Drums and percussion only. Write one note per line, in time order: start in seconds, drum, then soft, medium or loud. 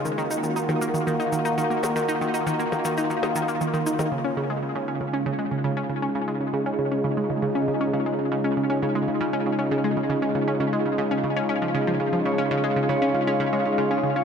0.05 shaker soft
0.18 shaker soft
0.31 shaker medium
0.43 shaker soft
0.56 shaker soft
0.69 percussion blips soft
0.69 shaker soft
0.82 shaker medium
0.95 shaker soft
1.07 shaker soft
1.20 shaker soft
1.33 shaker medium
1.45 shaker soft
1.58 shaker soft
1.71 shaker soft
1.83 percussion blips medium
1.83 shaker medium
1.96 shaker soft
2.09 shaker soft
2.21 shaker soft
2.34 shaker medium
2.47 shaker soft
2.60 shaker soft
2.72 percussion blips medium
2.72 shaker soft
2.85 shaker medium
2.98 shaker soft
3.10 shaker soft
3.23 percussion blips medium
3.23 shaker soft
3.36 shaker medium
3.48 shaker soft
3.61 shaker soft
3.74 shaker soft
3.86 shaker medium
3.99 percussion blips medium
3.99 shaker soft